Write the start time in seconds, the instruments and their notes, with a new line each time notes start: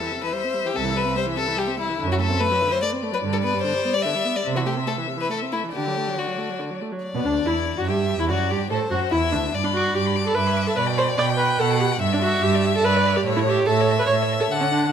Already playing: violin A4 E5
0.01 viola E3
0.11 viola C3
0.23 viola E3, violin B4
0.33 viola G3, violin C5
0.44 viola C4
0.54 viola G3
0.65 viola E3, violin G4
0.75 cello C2, viola C3, violin A4
0.84 viola E3
0.94 viola G3, violin B4
1.05 viola C4
1.16 viola G3, violin C5
1.26 viola E3
1.37 viola C3, violin A4
1.47 viola E3
1.57 viola G3, violin G4
1.68 viola C4
1.78 viola G3, violin E4
1.89 viola E3
1.99 cello F#2, viola D3
2.08 viola F#3
2.12 violin F#4
2.19 viola A3, violin A4
2.30 viola C4
2.40 viola A3, violin B4
2.51 viola F#3
2.62 viola D3
2.71 viola F#3, violin C5
2.81 viola A3, violin D5
2.92 viola C4
3.03 viola A3
3.12 viola F#3, violin B4
3.23 cello G2, viola D3
3.33 viola G3, violin A4
3.44 viola B3, violin B4
3.54 viola G3
3.62 viola D3, violin C5
3.74 viola G3
3.85 viola B3
3.94 viola G3, violin D5
4.02 viola D3, violin E5
4.15 viola G3
4.25 viola B3
4.36 viola G3, violin D5
4.46 viola C3, cello C3, violin E5
4.55 viola E3, violin F#4
4.66 viola A3, violin G4
4.77 viola C4
4.87 viola A3, violin A4
4.98 viola E3
5.07 viola C3
5.17 viola E3, violin B4
5.29 viola A3, violin A4
5.42 viola C4
5.52 viola A3, violin E4
5.64 viola E3
5.73 cello D3, viola D3, violin G4 D5
5.87 viola F#3
5.97 viola A3
6.07 viola F#3
6.18 viola D3, violin F#4
6.27 viola F#3
6.38 viola A3
6.49 viola F#3
6.59 viola D3
6.71 viola F#3
6.81 viola A3
6.92 viola F#3
7.04 violin D5
7.14 cello B2, violin B3, viola B3
7.24 cello D2, viola D4, violin D4
7.45 cello E2, viola E4, violin E4
7.78 cello F#2, viola F#4, violin F#4
7.87 cello G2, viola G4, violin G4 E5
8.19 cello E2, violin E4, viola E4
8.29 cello F#2, violin F#4 D5, viola F#4
8.50 cello G2, viola G4, violin G4
8.70 cello A2, viola A4, violin A4 C5
8.91 cello F#2, viola F#4, violin F#4
9.11 cello E2, viola E4, violin E4 E5
9.31 cello D2, viola D4, violin D4
9.54 cello G2, violin D5 D6
9.63 viola D4, violin B5
9.74 viola F#4, violin D6
9.85 violin B5
9.94 cello G2, viola G4, violin D6
10.06 violin B5
10.15 violin D6
10.26 viola A4, violin B5
10.34 cello G2, viola B4, violin E5 D6
10.47 violin B5
10.56 violin D6
10.67 viola A4, violin B5
10.76 cello B2, viola B4, violin D5 B5
10.87 violin G5
10.98 viola C5, violin B5
11.08 violin G5
11.18 cello B2, viola D5, violin G5 B5
11.29 violin G5
11.37 viola B4, violin B5
11.50 violin G5
11.59 cello B2, viola A4, violin F#5 B5
11.71 violin G5
11.80 viola G4, violin B5
11.92 violin G5
12.00 cello G2, violin E5
12.13 viola D4, violin D5
12.22 viola F#4, violin E5
12.34 violin D5
12.42 cello G2, viola G4, violin E5
12.55 violin D5
12.65 violin E5
12.75 viola A4, violin D5
12.83 cello G2, viola B4, violin D5 E5
12.96 violin D5
13.06 violin E5
13.16 viola G4, violin D5
13.25 cello A2, violin C#5 E5
13.36 viola E4, violin C#5
13.46 viola G4, violin E5
13.60 violin C#5
13.66 cello A2, viola A4, violin E5
13.81 violin C#5
13.91 violin E5
13.99 viola B4, violin C#5
14.06 cello A2, viola C#5
14.12 violin E5
14.22 violin C#5
14.33 violin E5
14.40 viola A4, violin C#5
14.51 cello D3, violin F#5 A5
14.60 viola C#4, violin F#5
14.71 viola D4, violin A5
14.84 violin F#5